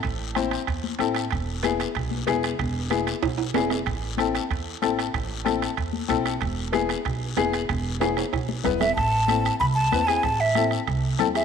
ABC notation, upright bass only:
X:1
M:4/4
L:1/8
Q:1/4=188
K:Am
V:1 name="Upright bass" clef=bass
A,,,4 E,,2 A,,,2 | E,,,4 B,,,2 E,,,2 | E,,,4 B,,,2 E,,,2 | A,,,4 E,,2 A,,,2 |
A,,,4 E,,2 B,,,2 | E,,,4 B,,,2 E,,,2 | E,,,4 B,,,2 E,,,2 | A,,,4 C,,2 E,,2 |
A,,,4 C,,2 z2 |]